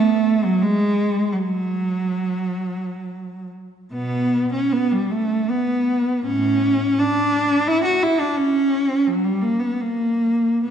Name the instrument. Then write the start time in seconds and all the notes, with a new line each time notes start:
cello
Already playing: A3
0.45 F#3
0.62 G#3
1.33 G3
1.38 F#3
3.93 B2 B3
4.53 C#4
4.72 B3
4.92 G3
5.11 A3
5.50 B3
6.26 A2 C#4
6.99 D4
7.68 E4
7.84 F#4
8.03 E4
8.20 D4
8.37 C#4
9.07 F#3
9.24 G3
9.42 A#3
9.60 B3
9.80 A#3